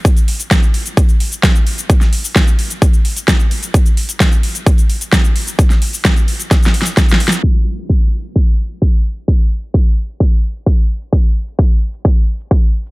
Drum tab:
HH |x--x--o--x--x--x--o--x--x--x--o--x--x--x--o--x--|x--x--o--o--x--x--o--x--x--x--o--x--x--x--o--x--|x--x--o--x--x--x--o--x--x--x--o--x--x--x--o--x--|x--x--o--o--x--x--o--x--x--x--o--x--x--x--o--x--|
SH |x--x-----x--x--x-----x--x--x-----x--x--x-----x--|x--x-----x--x--x-----x--x--x-----x--x--x-----x--|x--x-----x--x--x-----x--x--x-----x--x--x-----x--|x--x-----x--x--x-----x--x--x-----x--x--x-----x--|
SD |------------o-----------------------o-----------|---o--------o-----------------------o-----------|------------o-----------------------o-----------|---o--------o-----------o---o---o---o---o---o---|
BD |o-----------o-----------o-----------o-----------|o-----------o-----------o-----------o-----------|o-----------o-----------o-----------o-----------|o-----------o-----------o-----------o-----------|

HH |------------------------------------------------|------------------------------------------------|------------------------------------------------|
SH |---------------------x-----------x--x--------x--|x--------x--x--------x-----------x-----------x--|x--x-----x--x--------x--x--x-----x--x--x-----x--|
SD |------------------------------------------------|------------------------------------------------|------------------------------------------------|
BD |o-----------o-----------o-----------o-----------|o-----------o-----------o-----------o-----------|o-----------o-----------o-----------o-----------|